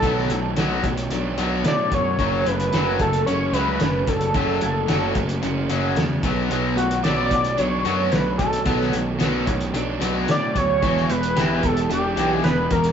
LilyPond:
<<
  \new Staff \with { instrumentName = "Analog synth lead" } { \time 4/4 \key b \minor \tempo 4 = 111 a'4 r2 d''8 cis''8~ | cis''8 b'4 a'8 cis''8 b'4 a'8~ | a'2~ a'8 r4. | r8 fis'8 d''4 cis''4 b'8 a'8~ |
a'4 r2 d''8 cis''8~ | cis''8 b'4 a'8 g'4 b'8 ais'8 | }
  \new Staff \with { instrumentName = "Overdriven electric guitar" } { \time 4/4 \key b \minor <b, fis a d'>8 a8 fis'8 a8 d'8 fis8 a8 fis8 | fis8 a8 fis'8 a8 cis'8 fis8 a8 fis8 | fis8 a8 fis'8 a8 cis'8 fis8 a8 b,8 | b,8 a8 fis'8 a8 d'8 fis8 a8 fis8 |
b,8 a8 fis'8 a8 d'8 fis8 a8 fis8 | e8 b8 g'8 b8 d'8 e8 b8 e8 | }
  \new Staff \with { instrumentName = "Overdriven electric guitar" } { \clef bass \time 4/4 \key b \minor <b, fis b>8 <b, fis>8 <b, fis b>8 <b, fis>8 <b, fis>8 <b, fis b>8 <b, fis>8 <b, fis>8 | <fis, cis fis>8 <fis, cis>8 <fis, cis fis>8 <fis, cis>8 <fis, cis>8 <fis, cis fis>8 <fis, cis>8 <fis, cis>8 | <fis, cis fis>8 <fis, cis>8 <fis, cis fis>8 <fis, cis>8 <fis, cis>8 <fis, cis fis>8 <fis, cis>8 <b, fis b>8 | <b, fis b>8 <b, fis>8 <b, fis b>8 <b, fis>8 <b, fis>8 <b, fis b>8 <b, fis>8 <b, fis>8 |
<b, fis b>8 <b, fis>8 <b, fis b>8 <b, fis>8 <b, fis>8 <b, fis b>8 <b, fis>8 <b, fis>8 | <e, b, e>8 <e, b,>8 <e, b, e>8 <e, b,>8 <e, b,>8 <e, b, e>8 <e, b,>8 <e, b,>8 | }
  \new Staff \with { instrumentName = "Picked electric bass" } { \clef bass \time 4/4 \key b \minor b,,8 b,,8 b,,8 b,,8 b,,8 b,,8 a,8 fis,8 | fis,,8 fis,,8 fis,,8 fis,,8 fis,,8 cis,8 fis,,8 fis,,8 | fis,,8 fis,,8 fis,,8 fis,,8 fis,,8 fis,,8 e,8 b,,8 | b,,8 b,,8 b,,8 b,,8 b,,8 fis,8 b,,8 b,,8 |
b,,8 b,,8 b,,8 b,,8 b,,8 b,,8 a,8 d,8 | e,,8 e,,8 e,,8 e,,8 e,,8 b,,8 e,,8 e,,8 | }
  \new DrumStaff \with { instrumentName = "Drums" } \drummode { \time 4/4 <hh bd>16 sn16 hh8 <hh sn>8 <hh bd>16 hh16 hh8 hh8 <hh sn>8 <hh bd>8 | <hh bd>8 hh16 hh16 <hh sn>8 <hh bd>16 hh16 hh8 hh8 <hh sn>8 <hh bd>16 hh16 | <hh bd>8 hh8 <hh sn>8 <hh bd>16 hh16 hh8 hh8 <hh sn>8 <hh bd>8 | hh8 hh16 hh16 <hh sn>8 <hh bd>16 hh16 hh8 hh8 <hh sn>8 <hh bd>16 hh16 |
<hh bd>16 sn16 hh8 <hh sn>8 <hh bd>16 hh16 hh8 hh8 <hh sn>8 <hh bd>8 | <hh bd>16 sn16 hh16 hh16 <hh sn>8 <hh bd>16 hh16 hh8 hh8 <hh sn>8 <hh bd>16 hh16 | }
>>